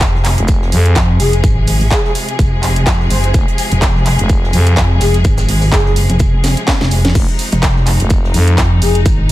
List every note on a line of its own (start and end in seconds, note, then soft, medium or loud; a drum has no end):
0.00 0.36 F1 loud
0.00 9.32 C3 medium
0.00 9.32 F3 medium
0.00 9.32 G#3 medium
0.00 7.14 G#4 medium
0.00 kick loud
0.00 snare loud
0.00 clap loud
0.00 closed hi-hat medium
0.00 shaker loud
0.15 snare soft
0.25 clap medium
0.25 open hi-hat loud
0.25 shaker medium
0.38 0.71 F1 loud
0.38 closed hi-hat medium
0.38 closed hi-hat soft
0.48 kick loud
0.48 closed hi-hat soft
0.48 shaker medium
0.62 snare soft
0.72 0.95 F2 loud
0.72 open hi-hat loud
0.72 shaker medium
0.86 closed hi-hat medium
0.96 1.18 F2 loud
0.96 kick loud
0.96 snare loud
0.96 clap loud
0.96 closed hi-hat soft
0.96 shaker medium
1.20 1.42 F1 loud
1.20 1.35 G#4 medium
1.20 open hi-hat loud
1.20 shaker medium
1.33 closed hi-hat medium
1.44 1.90 G#1 loud
1.44 kick loud
1.44 closed hi-hat medium
1.44 shaker medium
1.67 open hi-hat loud
1.67 shaker medium
1.81 closed hi-hat soft
1.81 open hi-hat medium
1.91 2.00 G#4 medium
1.91 kick loud
1.91 snare loud
1.91 clap loud
1.91 closed hi-hat medium
1.91 shaker medium
2.05 2.11 G#4 medium
2.05 snare soft
2.15 open hi-hat loud
2.15 shaker medium
2.29 closed hi-hat medium
2.39 2.85 F1 loud
2.39 kick loud
2.39 closed hi-hat medium
2.39 shaker medium
2.63 clap medium
2.63 open hi-hat loud
2.63 shaker medium
2.76 closed hi-hat medium
2.86 3.09 F2 loud
2.86 kick loud
2.86 snare loud
2.86 clap loud
2.86 closed hi-hat medium
2.86 shaker medium
3.00 snare soft
3.10 3.33 F#1 loud
3.10 3.19 C5 medium
3.10 open hi-hat loud
3.10 shaker medium
3.24 3.30 C5 medium
3.24 closed hi-hat medium
3.34 3.46 F1 medium
3.34 kick loud
3.34 closed hi-hat medium
3.34 shaker medium
3.48 closed hi-hat soft
3.58 open hi-hat loud
3.58 shaker medium
3.71 4.17 F1 loud
3.71 closed hi-hat soft
3.71 closed hi-hat medium
3.82 kick loud
3.82 snare loud
3.82 clap loud
3.82 closed hi-hat medium
3.82 shaker medium
3.96 snare soft
4.06 clap medium
4.06 open hi-hat loud
4.06 shaker medium
4.19 4.52 F1 loud
4.19 closed hi-hat soft
4.19 closed hi-hat medium
4.29 kick loud
4.29 closed hi-hat medium
4.29 shaker medium
4.44 snare soft
4.53 4.75 F2 loud
4.53 open hi-hat loud
4.53 shaker medium
4.67 closed hi-hat medium
4.76 4.99 F2 loud
4.76 kick loud
4.76 snare loud
4.76 clap loud
4.76 closed hi-hat medium
4.76 shaker medium
5.00 5.23 F1 loud
5.00 5.16 G#4 medium
5.00 snare loud
5.00 open hi-hat loud
5.00 shaker medium
5.14 snare soft
5.14 closed hi-hat medium
5.24 5.71 G#1 loud
5.24 kick loud
5.24 closed hi-hat medium
5.24 shaker medium
5.38 snare loud
5.38 shaker medium
5.49 snare soft
5.49 open hi-hat loud
5.62 open hi-hat medium
5.62 shaker medium
5.72 6.07 F#1 medium
5.72 5.81 G#4 medium
5.72 kick loud
5.72 snare loud
5.72 clap loud
5.72 closed hi-hat medium
5.72 shaker medium
5.85 5.92 G#4 medium
5.85 snare soft
5.96 open hi-hat loud
5.96 shaker medium
6.10 6.55 F1 medium
6.10 closed hi-hat medium
6.19 kick loud
6.19 closed hi-hat medium
6.19 shaker medium
6.44 snare medium
6.44 snare loud
6.44 open hi-hat loud
6.44 shaker medium
6.57 closed hi-hat medium
6.68 kick loud
6.68 snare medium
6.68 snare loud
6.68 clap loud
6.68 closed hi-hat medium
6.68 shaker medium
6.81 7.14 F1 medium
6.81 snare soft
6.81 snare medium
6.91 open hi-hat loud
6.91 shaker medium
7.05 snare medium
7.05 closed hi-hat medium
7.15 7.26 F1 loud
7.15 9.32 D#4 medium
7.15 kick loud
7.15 closed hi-hat medium
7.15 crash medium
7.15 shaker medium
7.28 closed hi-hat soft
7.39 open hi-hat loud
7.39 shaker medium
7.52 7.98 F1 loud
7.52 closed hi-hat medium
7.52 closed hi-hat soft
7.63 kick loud
7.63 snare loud
7.63 clap loud
7.63 closed hi-hat medium
7.63 shaker medium
7.76 snare soft
7.86 clap medium
7.86 open hi-hat loud
7.86 shaker medium
8.00 8.33 F1 loud
8.00 closed hi-hat medium
8.00 closed hi-hat soft
8.10 kick loud
8.10 closed hi-hat medium
8.10 shaker medium
8.24 snare soft
8.34 8.56 F2 loud
8.34 open hi-hat loud
8.34 shaker medium
8.48 closed hi-hat medium
8.57 8.80 F2 loud
8.57 kick loud
8.57 snare loud
8.57 clap loud
8.57 closed hi-hat medium
8.57 shaker medium
8.82 9.04 F1 loud
8.82 8.97 G#4 medium
8.82 open hi-hat loud
8.82 shaker medium
8.95 closed hi-hat medium
9.06 9.32 G#1 loud
9.06 kick loud
9.06 closed hi-hat medium
9.06 shaker loud